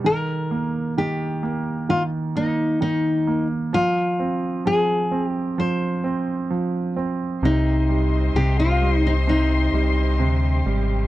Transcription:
0.04 grand piano D#3, nylon-string guitar A#4
0.51 grand piano A#3
0.98 grand piano D#3, nylon-string guitar G4
1.43 grand piano A#3
1.89 grand piano D#3, nylon-string guitar F4
2.36 grand piano A#3, nylon-string guitar D#4
2.81 grand piano D#3, nylon-string guitar D#4
3.27 grand piano A#3
3.73 grand piano F3, nylon-string guitar F4
4.19 grand piano C4
4.65 grand piano F3, nylon-string guitar G#4
5.11 grand piano C4
5.26 nylon-string guitar G4
5.58 grand piano F3, nylon-string guitar C5
6.04 grand piano C4
6.50 grand piano F3
6.96 grand piano C4
7.42 sub bass C2, grand piano C3, nylon-string guitar D#4, string section G4 C5 D#5 C6
7.89 grand piano G3
8.34 sub bass C2, grand piano C3, nylon-string guitar G4
8.60 nylon-string guitar F4
8.82 grand piano G3
9.07 nylon-string guitar D#4
9.27 grand piano C3, nylon-string guitar D#4
9.73 sub bass C2, grand piano G3
10.19 sub bass D2, grand piano C3
10.65 sub bass G#1, grand piano G3

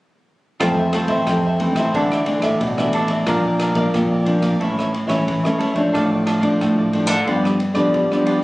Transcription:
0.60 nylon-string guitar F2 E3 A3 C4, cavaquinho F4 A4 C5 E5, kick, cross-stick, ride
0.78 cavaquinho A4 C5 E5
0.93 nylon-string guitar E3 A3 C4, cavaquinho F4 A4 C5 E5, cross-stick, ride
1.08 cavaquinho A4 C5 E5, kick, ride
1.27 nylon-string guitar F2 C3, kick, cross-stick, ride
1.46 cavaquinho A4 C5 E5
1.60 nylon-string guitar E3 A3 C4, muted cavaquinho stroke, ride
1.73 nylon-string guitar A2, cavaquinho E5, kick, cross-stick, ride
1.78 cavaquinho A4 C5
1.94 nylon-string guitar D3 E3 A3 D4, cavaquinho D4 A4 D5 E5, kick, ride
2.12 cavaquinho A4 D5 E5, cross-stick
2.26 nylon-string guitar E3 A3 D4, muted cavaquinho stroke, ride
2.40 nylon-string guitar A2, cavaquinho E5, kick, cross-stick, ride
2.44 cavaquinho A4 D5
2.61 nylon-string guitar A2 B2, kick, ride
2.77 nylon-string guitar E3 A3 D4, cavaquinho A4 D5 E5, cross-stick
2.93 cavaquinho D4 A4 D5 E5, ride
3.08 cavaquinho A4 D5 E5, kick, ride
3.26 nylon-string guitar A#2 F3 A#3 D4, cavaquinho D4 A#4 D5 F5, kick, cross-stick, ride
3.45 cavaquinho A#4 D5 F5
3.60 cavaquinho D4 A#4 D5 F5, cross-stick, ride
3.75 nylon-string guitar F3 A#3 D4, cavaquinho D5 F5, kick, ride
3.79 cavaquinho A#4
3.94 nylon-string guitar F2 A#2, kick, cross-stick, ride
4.12 cavaquinho A#4 D5 F5
4.25 nylon-string guitar F3 A#3 D4, muted cavaquinho stroke, ride
4.40 nylon-string guitar A#2, cavaquinho D5 F5, kick, cross-stick, ride
4.44 cavaquinho A#4
4.60 nylon-string guitar A2 E3 A3 C#4, cavaquinho E4 A4 C#5 E5, kick, ride
4.77 cavaquinho A4 C#5 E5, cross-stick
4.92 muted cavaquinho stroke, ride
5.07 nylon-string guitar E3 A3 C#4, cavaquinho A4 C#5 E5, kick, cross-stick, ride
5.28 nylon-string guitar E3, kick, ride
5.44 nylon-string guitar E3 A3 C#4, cavaquinho A4 C#5 E5, cross-stick
5.58 cavaquinho E4 A4 C#5 E5, ride
5.73 nylon-string guitar F3 A3 D4, cavaquinho A4 C#5 E5, kick, ride
5.93 nylon-string guitar A2, cavaquinho D4 A4 D5 F5, kick, cross-stick, ride
6.10 cavaquinho A4 D5 F5
6.26 cavaquinho D4 A4 D5 F5, cross-stick, ride
6.40 nylon-string guitar F3 A3 D4, cavaquinho A4 D5 F5, kick, ride
6.61 nylon-string guitar A2, kick, cross-stick, ride
6.77 cavaquinho A4 D5 F5
6.93 nylon-string guitar F3 A3 D4, muted cavaquinho stroke, ride
7.07 nylon-string guitar D3, cavaquinho A4 D5 F5, kick, cross-stick, ride
7.26 nylon-string guitar G2 F3 B3 D4, cavaquinho F4 G4 B4 D5, kick, ride
7.43 cavaquinho G4 B4 D5, cross-stick
7.60 muted cavaquinho stroke, ride
7.74 nylon-string guitar D3 F3 B3 D4, cavaquinho G4 B4 D5, kick, cross-stick, ride
7.94 nylon-string guitar D3 G3, kick, ride
8.11 nylon-string guitar F3 B3 D4, cavaquinho G4 B4 D5, cross-stick
8.26 cavaquinho F4 G4 B4 D5, ride
8.41 cavaquinho D5

